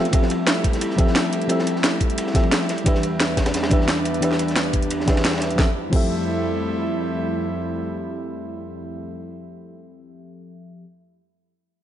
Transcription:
0.00 5.55 G3 medium
0.00 2.65 A3 medium
0.00 2.66 E4 medium
0.05 closed hi-hat soft
0.05 ride soft
0.11 0.95 F3 medium
0.11 0.96 C4 medium
0.11 0.96 G4 medium
0.11 0.97 A4 medium
0.11 0.97 E5 medium
0.11 kick loud
0.11 closed hi-hat medium
0.11 ride medium
0.22 snare soft
0.30 closed hi-hat medium
0.30 ride medium
0.47 snare loud
0.47 closed hi-hat medium
0.47 ride medium
0.57 snare soft
0.64 kick medium
0.64 closed hi-hat medium
0.64 ride medium
0.73 snare soft
0.73 closed hi-hat soft
0.81 closed hi-hat medium
0.81 ride medium
0.90 snare soft
0.96 1.46 F3 medium
0.96 1.47 C4 medium
0.96 1.48 G4 medium
0.96 1.48 A4 medium
0.96 kick loud
0.96 closed hi-hat medium
0.96 ride medium
1.00 1.49 E5 medium
1.07 snare soft
1.16 snare loud
1.16 closed hi-hat medium
1.16 ride medium
1.25 ride soft
1.33 closed hi-hat medium
1.33 ride medium
1.42 closed hi-hat soft
1.48 2.32 F3 medium
1.48 2.32 C4 medium
1.48 2.33 G4 medium
1.48 2.33 A4 medium
1.48 2.34 E5 medium
1.48 closed hi-hat medium
1.48 ride medium
1.59 snare medium
1.67 closed hi-hat medium
1.67 ride medium
1.76 snare soft
1.84 snare loud
1.84 closed hi-hat medium
1.84 ride medium
2.00 kick medium
2.00 closed hi-hat medium
2.00 ride medium
2.10 closed hi-hat soft
2.18 closed hi-hat medium
2.18 ride medium
2.27 snare soft
2.34 2.67 F3 medium
2.34 2.68 C4 medium
2.34 2.68 G4 medium
2.34 2.68 A4 medium
2.34 2.68 E5 medium
2.34 kick loud
2.34 snare soft
2.34 closed hi-hat medium
2.34 ride medium
2.43 ride soft
2.51 snare loud
2.51 closed hi-hat medium
2.51 ride medium
2.61 snare soft
2.69 5.56 E2 medium
2.69 5.56 B3 medium
2.69 5.56 D4 medium
2.69 snare soft
2.69 closed hi-hat medium
2.69 ride medium
2.78 closed hi-hat soft
2.78 ride soft
2.84 3.68 E3 medium
2.84 3.69 D4 medium
2.84 3.69 G4 medium
2.84 3.70 B4 medium
2.84 kick loud
2.84 closed hi-hat medium
2.84 ride medium
2.88 3.70 E5 medium
2.95 snare soft
3.03 closed hi-hat medium
3.03 ride medium
3.20 snare loud
3.20 closed hi-hat medium
3.20 ride medium
3.29 snare soft
3.37 kick medium
3.37 snare loud
3.37 closed hi-hat medium
3.37 ride medium
3.46 snare loud
3.46 closed hi-hat soft
3.46 ride medium
3.54 snare loud
3.54 closed hi-hat medium
3.54 ride medium
3.63 snare loud
3.63 ride medium
3.69 4.19 E3 medium
3.69 4.20 D4 medium
3.69 4.20 G4 medium
3.69 4.21 B4 medium
3.69 4.21 E5 medium
3.69 kick loud
3.69 closed hi-hat medium
3.69 ride medium
3.81 snare soft
3.88 snare loud
3.88 closed hi-hat medium
3.88 ride medium
3.97 ride soft
4.05 closed hi-hat medium
4.05 ride medium
4.14 closed hi-hat soft
4.21 5.05 E3 medium
4.21 5.05 D4 medium
4.21 5.06 G4 medium
4.21 5.06 B4 medium
4.21 5.07 E5 medium
4.21 closed hi-hat medium
4.21 ride medium
4.31 snare soft
4.31 snare medium
4.39 closed hi-hat medium
4.39 ride medium
4.48 snare soft
4.48 closed hi-hat soft
4.56 snare loud
4.56 closed hi-hat medium
4.56 ride medium
4.73 kick medium
4.73 closed hi-hat medium
4.73 ride medium
4.82 closed hi-hat soft
4.91 closed hi-hat medium
4.91 ride medium
5.00 snare soft
5.06 5.56 E3 medium
5.06 5.56 D4 medium
5.06 5.57 G4 medium
5.06 5.57 B4 medium
5.06 5.58 E5 medium
5.06 kick loud
5.06 snare loud
5.06 closed hi-hat medium
5.06 ride medium
5.16 snare loud
5.16 ride medium
5.25 snare loud
5.25 snare medium
5.25 closed hi-hat medium
5.25 ride medium
5.29 snare medium
5.29 ride medium
5.33 snare medium
5.33 ride medium
5.38 snare medium
5.38 ride medium
5.42 snare soft
5.42 closed hi-hat medium
5.42 ride medium
5.50 closed hi-hat soft
5.50 ride soft
5.56 9.07 F2 medium
5.56 5.67 F3 medium
5.56 9.07 G3 medium
5.56 9.07 A3 medium
5.56 5.68 C4 medium
5.56 9.07 C4 medium
5.56 9.07 E4 medium
5.56 5.68 G4 medium
5.56 kick loud
5.56 snare medium
5.60 5.69 A4 medium
5.60 5.70 E5 medium
5.90 9.43 F3 medium
5.90 9.44 C4 medium
5.90 9.46 G4 medium
5.90 kick loud
5.90 crash medium
5.94 9.48 A4 medium
5.94 9.49 E5 medium

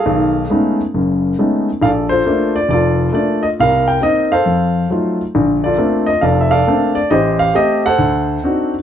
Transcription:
0.00 0.75 G#4 medium
0.00 0.75 A4 medium
0.00 0.75 F5 medium
0.06 0.44 B1 medium
0.06 0.44 D#3 medium
0.50 0.80 G#3 soft
0.50 0.80 A3 soft
0.50 0.80 B3 soft
0.50 0.80 C#4 soft
0.50 0.80 D#4 medium
0.94 1.32 F#1 medium
0.94 1.32 F#2 medium
1.39 1.68 G#3 soft
1.39 1.69 A3 soft
1.39 1.69 B3 soft
1.39 1.69 C#4 soft
1.39 1.69 D#4 soft
1.82 2.20 A#1 medium
1.82 2.10 A4 medium
1.82 2.54 D5 medium
1.82 1.89 F5 medium
2.09 2.72 F4 medium
2.09 2.71 A4 soft
2.09 2.55 C5 medium
2.26 2.56 A3 medium
2.26 2.57 A#3 soft
2.26 2.56 D4 medium
2.56 2.69 D5 medium
2.69 3.07 F1 medium
2.69 3.13 D5 medium
2.73 3.56 F4 medium
2.73 3.56 A4 medium
3.13 3.44 A3 medium
3.13 3.44 A#3 soft
3.13 3.44 D4 soft
3.13 3.44 D5 medium
3.43 3.48 D#5 medium
3.60 3.97 C2 medium
3.60 4.44 A#4 medium
3.60 3.89 F5 medium
3.88 4.02 G5 medium
4.01 4.32 A#3 soft
4.01 4.32 C4 soft
4.01 4.33 D#4 medium
4.01 4.32 D#5 medium
4.32 5.16 A4 medium
4.32 5.16 C5 medium
4.32 4.87 F5 medium
4.46 4.84 F2 medium
4.90 5.21 F#3 soft
4.90 5.21 A3 soft
4.90 5.21 D#4 soft
4.90 5.22 F4 soft
5.35 5.73 A#1 medium
5.35 5.73 D3 medium
5.64 6.49 F4 medium
5.64 6.21 A4 soft
5.64 6.09 D5 medium
5.77 6.08 A3 medium
5.77 6.09 A#3 soft
5.77 6.09 C4 soft
5.77 6.09 D4 medium
6.06 6.23 D#5 medium
6.21 6.61 F1 medium
6.21 6.49 A4 medium
6.21 6.50 D5 medium
6.21 6.40 F5 medium
6.41 6.51 E5 medium
6.51 7.06 A4 medium
6.51 6.94 D5 medium
6.51 6.97 F5 medium
6.67 6.97 A3 soft
6.67 6.97 A#3 soft
6.67 6.98 C4 soft
6.67 6.98 D4 medium
6.95 7.11 D5 medium
7.11 7.49 A1 medium
7.11 7.54 G4 medium
7.11 7.86 C5 medium
7.11 7.40 D#5 medium
7.39 7.55 F5 medium
7.54 7.85 A3 medium
7.54 7.85 C4 soft
7.54 7.85 G4 medium
7.54 7.85 D#5 medium
7.86 8.69 A4 medium
7.86 8.70 C5 medium
7.86 8.69 F#5 medium
7.98 8.37 D2 medium
8.44 8.74 C4 medium
8.44 8.74 D4 soft
8.44 8.74 D#4 soft
8.44 8.75 F#4 medium

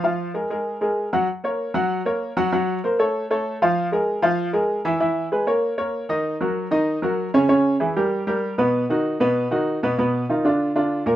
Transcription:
0.04 0.29 F3 medium
0.04 0.29 F4 medium
0.04 0.30 F5 medium
0.34 0.47 G#3 medium
0.34 0.47 G#4 medium
0.34 0.47 A#4 medium
0.50 0.76 G#3 medium
0.50 0.76 G#4 medium
0.50 0.76 A#4 medium
0.81 1.07 G#3 medium
0.81 1.07 G#4 medium
0.81 1.07 A#4 medium
1.13 1.25 F#3 medium
1.13 1.25 F#4 medium
1.13 1.26 F#5 medium
1.44 1.69 A#3 medium
1.44 1.69 A#4 medium
1.44 1.70 C#5 medium
1.74 2.00 F#3 medium
1.74 2.00 F#4 medium
1.74 2.00 F#5 medium
2.05 2.31 A#3 medium
2.05 2.31 A#4 medium
2.05 2.31 C#5 medium
2.37 2.49 F#3 medium
2.37 2.50 F#4 medium
2.37 2.50 F#5 medium
2.52 2.78 F#3 medium
2.52 2.78 F#4 medium
2.52 2.78 F#5 medium
2.84 2.96 A#3 medium
2.84 2.96 A#4 medium
2.84 2.97 C5 medium
2.99 3.24 A3 medium
2.99 3.24 A4 medium
2.99 3.25 C#5 medium
3.30 3.56 A3 medium
3.30 3.56 A4 medium
3.30 3.56 C#5 medium
3.62 3.87 F3 medium
3.62 3.87 F4 medium
3.62 3.87 F5 medium
3.92 4.17 G#3 medium
3.92 4.18 G#4 medium
3.92 4.18 A#4 medium
4.22 4.48 F3 medium
4.22 4.48 F4 medium
4.22 4.48 F5 medium
4.53 4.79 G#3 medium
4.53 4.79 G#4 medium
4.53 4.79 A#4 medium
4.85 4.98 E3 medium
4.85 4.98 E4 medium
4.85 4.98 E5 medium
5.00 5.26 E3 medium
5.00 5.26 E4 medium
5.00 5.26 E5 medium
5.32 5.44 G#3 medium
5.32 5.44 G#4 medium
5.32 5.45 B4 medium
5.47 5.72 A#3 medium
5.47 5.73 A#4 medium
5.47 5.73 C#5 medium
5.78 6.03 A#3 medium
5.78 6.03 A#4 medium
5.78 6.04 C#5 medium
6.09 6.35 D#3 medium
6.09 6.35 D#4 medium
6.09 6.35 D#5 medium
6.41 6.66 F#3 medium
6.41 6.66 F#4 medium
6.41 6.66 A#4 medium
6.71 6.97 D#3 medium
6.71 6.97 D#4 medium
6.71 6.97 D#5 medium
7.02 7.28 F#3 medium
7.02 7.28 F#4 medium
7.02 7.28 A#4 medium
7.34 7.47 C#3 medium
7.34 7.47 C#4 medium
7.34 7.47 C#5 medium
7.49 7.75 C#3 medium
7.49 7.74 C#4 medium
7.49 7.75 C#5 medium
7.80 7.93 E3 medium
7.80 7.93 E4 medium
7.80 7.93 G#4 medium
7.96 8.22 G3 medium
7.96 8.22 G4 medium
7.96 8.22 A#4 medium
8.27 8.52 G3 medium
8.27 8.53 G4 medium
8.27 8.53 A#4 medium
8.58 8.84 B2 medium
8.58 8.84 B3 medium
8.58 8.84 B4 medium
8.90 9.15 D#3 medium
8.90 9.15 D#4 medium
8.90 9.15 F#4 medium
9.20 9.46 B2 medium
9.20 9.46 B3 medium
9.20 9.46 B4 medium
9.51 9.77 D#3 medium
9.51 9.77 D#4 medium
9.51 9.77 F#4 medium
9.83 9.96 B2 medium
9.83 9.96 B3 medium
9.83 9.96 B4 medium
9.98 10.24 B2 medium
9.98 10.24 B3 medium
9.98 10.24 B4 medium
10.29 10.42 D#3 medium
10.29 10.42 D#4 medium
10.29 10.42 F4 medium
10.44 10.70 D3 medium
10.44 10.70 D4 medium
10.44 10.71 F4 medium
10.75 11.01 D3 medium
10.75 11.01 D4 medium
10.75 11.01 F4 medium
11.06 11.16 A#2 medium
11.06 11.16 A#3 medium
11.06 11.16 A#4 medium

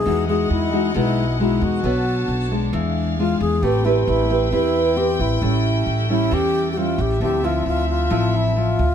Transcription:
0.00 0.25 G#4 loud
0.05 0.47 E2 medium
0.05 0.93 E3 medium
0.05 0.24 G#3 medium
0.05 0.24 D#4 medium
0.05 0.25 F#4 medium
0.05 1.82 G#4 medium
0.05 1.82 D#5 medium
0.05 1.82 F#5 medium
0.28 0.69 G#3 medium
0.28 0.69 D#4 medium
0.28 0.69 F#4 medium
0.28 0.49 G#4 medium
0.50 0.92 E2 medium
0.50 0.92 E4 medium
0.72 0.91 G#3 medium
0.72 0.91 D#4 medium
0.72 0.91 F#4 medium
0.94 1.58 B1 medium
0.94 1.82 B2 medium
0.94 1.23 G#3 medium
0.94 1.23 D#4 medium
0.94 1.37 E4 medium
0.94 1.24 F#4 medium
1.39 1.80 G#3 medium
1.39 1.81 D#4 medium
1.39 1.65 E4 medium
1.39 1.81 F#4 medium
1.61 1.82 E2 medium
1.61 2.52 F#4 medium
1.84 2.25 B1 medium
1.84 2.51 B3 medium
1.84 3.61 D4 medium
1.84 2.29 D4 medium
1.84 2.29 A4 medium
1.84 2.73 C#5 medium
1.84 2.29 C#5 medium
1.84 2.73 A5 medium
2.28 2.70 B1 medium
2.51 3.15 G#3 medium
2.51 3.15 D4 medium
2.73 3.36 E2 medium
2.73 3.61 E3 medium
2.73 3.62 G#4 medium
2.73 3.62 F5 medium
3.19 3.62 G#3 soft
3.19 3.62 D4 medium
3.19 3.40 F4 loud
3.19 3.62 F4 medium
3.40 3.61 E2 medium
3.40 3.64 G#4 medium
3.61 4.04 A1 medium
3.61 4.50 A3 medium
3.61 5.40 C4 medium
3.61 3.82 C4 medium
3.61 3.87 G4 loud
3.61 3.82 G4 medium
3.61 5.40 B4 medium
3.61 3.82 B4 medium
3.61 7.17 G5 medium
3.85 4.26 C4 medium
3.85 4.06 E4 medium
3.85 4.27 G4 medium
3.85 4.27 B4 medium
4.07 4.49 A1 medium
4.07 4.49 E4 medium
4.29 4.48 C4 medium
4.29 4.49 G4 medium
4.29 4.49 B4 medium
4.52 5.15 E2 medium
4.52 5.40 E3 medium
4.52 4.81 C4 medium
4.52 4.99 E4 medium
4.52 4.81 G4 medium
4.52 4.82 B4 medium
4.96 5.38 C4 medium
4.96 5.38 G4 medium
4.96 5.22 G4 medium
4.96 5.38 B4 medium
5.19 5.40 A1 medium
5.19 5.87 E4 medium
5.42 5.83 A1 medium
5.42 6.29 A2 medium
5.42 6.06 G3 medium
5.42 7.19 C#4 medium
5.42 6.06 C#4 medium
5.42 6.06 E4 medium
5.42 7.19 A4 medium
5.86 6.28 A1 medium
6.09 6.73 G3 medium
6.09 6.73 C#4 medium
6.09 6.73 E4 medium
6.09 6.35 E4 medium
6.31 6.95 E2 medium
6.31 7.19 E3 medium
6.31 6.71 G4 loud
6.72 6.79 G4 medium
6.77 7.20 G3 medium
6.77 7.20 C#4 soft
6.77 7.20 E4 medium
6.77 7.02 F4 medium
6.98 7.19 A1 medium
6.98 7.22 G4 medium
7.20 7.62 D2 medium
7.20 8.09 D3 medium
7.20 7.40 F3 soft
7.20 7.40 C4 medium
7.20 8.95 C4 medium
7.20 7.40 E4 medium
7.20 7.46 G4 loud
7.20 8.95 E5 medium
7.43 8.07 F3 medium
7.43 8.07 C4 medium
7.43 8.07 E4 medium
7.43 7.67 F4 medium
7.66 8.08 D2 medium
7.66 7.88 F4 medium
7.90 8.38 F4 medium
8.10 8.74 A1 medium
8.10 8.95 A2 medium
8.10 8.52 F3 medium
8.10 8.52 C4 medium
8.10 8.52 E4 medium
8.36 8.60 E4 medium
8.56 8.85 F3 medium
8.56 8.85 C4 medium
8.56 8.85 E4 medium
8.56 8.95 F4 medium
8.79 8.95 D2 medium

